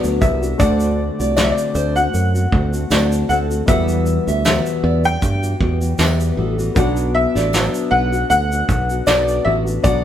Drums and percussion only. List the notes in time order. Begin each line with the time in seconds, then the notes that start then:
0.04 shaker
0.22 kick, shaker
0.43 shaker
0.60 kick, shaker
0.80 shaker
1.20 shaker
1.37 snare, tambourine, shaker
1.58 shaker
1.75 shaker
1.96 shaker
2.14 shaker
2.35 shaker
2.52 kick
2.73 shaker
2.91 snare, tambourine, shaker
3.12 shaker
3.30 shaker
3.51 shaker
3.68 kick, shaker
3.88 shaker
4.06 shaker
4.28 shaker
4.45 snare, tambourine, shaker
4.66 shaker
5.04 shaker
5.22 kick, shaker
5.43 shaker
5.61 kick
5.81 shaker
5.98 snare, tambourine, shaker
6.20 shaker
6.59 shaker
6.76 kick, shaker
6.97 shaker
7.36 snare, shaker
7.53 snare, tambourine, shaker
7.74 shaker
8.13 shaker
8.31 shaker
8.52 shaker
8.69 kick, shaker
8.90 shaker
9.07 snare, tambourine, shaker
9.28 shaker
9.67 shaker
9.84 kick, shaker